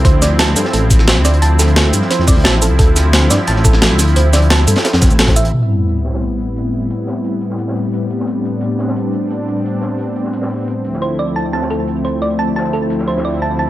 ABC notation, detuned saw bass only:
X:1
M:4/4
L:1/16
Q:1/4=175
K:Am
V:1 name="Detuned saw bass" clef=bass
D,,6 G,, z A,,,4- A,,, D,,3 | D,,6 G,, z2 F,,2 D,, A,,,3 C,, | D,,6 G,, z A,,,4- A,,, D,,3 | D,,6 G,, z2 F,,2 A,,,4- A,,, |
z16 | z16 | z16 | z16 |
z16 | z16 |]